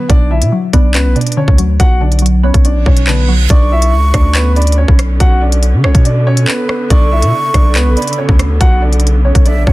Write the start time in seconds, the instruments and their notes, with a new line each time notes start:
0.09 808-style bass B1, synth pluck B2, grand piano D4 D5, kick, closed hi-hat
0.31 synth pluck D3, grand piano E4 E5
0.41 808-style bass B2, closed hi-hat
0.52 synth pluck F#3
0.73 808-style bass B1, synth pluck B3, grand piano D4 D5, kick, closed hi-hat
0.94 808-style bass C#2, grand piano B3 B4, synth pluck C#4, clap, closed hi-hat
1.05 808-style bass B1
1.16 synth pluck B2, grand piano D4 D5, closed hi-hat
1.21 closed hi-hat
1.27 closed hi-hat
1.32 closed hi-hat
1.37 synth pluck D3, grand piano C#4 C#5
1.48 808-style bass D2, kick
1.58 synth pluck F#3, closed hi-hat
1.80 808-style bass B1, synth pluck B2, grand piano F#4 F#5, kick, closed hi-hat
2.01 synth pluck D3, grand piano D4 D5
2.12 closed hi-hat
2.19 synth pluck F#3, closed hi-hat
2.26 closed hi-hat
2.43 synth pluck B3, grand piano C#4 C#5
2.54 808-style bass B1, kick, closed hi-hat
2.65 synth pluck C#4, grand piano D4 D5, closed hi-hat, reverse cymbal
2.76 808-style bass A#1
2.86 808-style bass B1, synth pluck B2, grand piano C#4 C#5, kick
2.97 closed hi-hat
3.07 synth pluck D3, grand piano B3 B4, clap
3.29 synth pluck F#3
3.50 808-style bass B1, string section D3 B3 C#4, grand piano D4 D5, flute C#6, kick, closed hi-hat
3.72 grand piano E4 E5
3.82 closed hi-hat
3.93 808-style bass C#2
4.14 808-style bass D2, grand piano D4 D5, kick, cross-stick, closed hi-hat
4.35 grand piano B3 B4, clap, closed hi-hat
4.56 grand piano D4 D5, flute B5, closed hi-hat
4.62 closed hi-hat
4.67 closed hi-hat
4.72 closed hi-hat
4.78 grand piano C#4 C#5
4.88 808-style bass B1, kick
4.99 cross-stick, closed hi-hat
5.20 808-style bass B1, grand piano F#4 F#5, kick, closed hi-hat
5.42 grand piano D4 D5
5.52 closed hi-hat
5.63 closed hi-hat
5.73 808-style bass D3
5.84 808-style bass B1, grand piano C#4 C#5, cross-stick
5.95 808-style bass B2, kick, closed hi-hat
6.05 grand piano D4 D5, closed hi-hat
6.27 grand piano C#4 C#5
6.37 closed hi-hat
6.48 grand piano B3 B4, clap
6.69 cross-stick
6.90 808-style bass B1, string section C#3, grand piano D4 D5, flute C#6, kick, closed hi-hat
7.12 grand piano E4 E5
7.22 808-style bass B2, closed hi-hat
7.54 808-style bass B1, grand piano D4 D5, kick, cross-stick, closed hi-hat
7.75 808-style bass C#2, grand piano B3 B4, clap, closed hi-hat
7.86 808-style bass B1
7.97 grand piano D4 D5, flute B5, closed hi-hat
8.02 closed hi-hat
8.07 closed hi-hat
8.13 closed hi-hat
8.18 grand piano C#4 C#5
8.29 808-style bass D2, kick
8.39 cross-stick, closed hi-hat
8.61 808-style bass B1, grand piano F#4 F#5, kick, closed hi-hat
8.82 grand piano D4 D5
8.93 closed hi-hat
9.00 closed hi-hat
9.07 closed hi-hat
9.25 grand piano C#4 C#5
9.35 808-style bass B1, kick, closed hi-hat
9.46 grand piano D4 D5, flute E5, closed hi-hat
9.56 808-style bass A#1
9.67 808-style bass B1, grand piano C#4 C#5, flute F#5, kick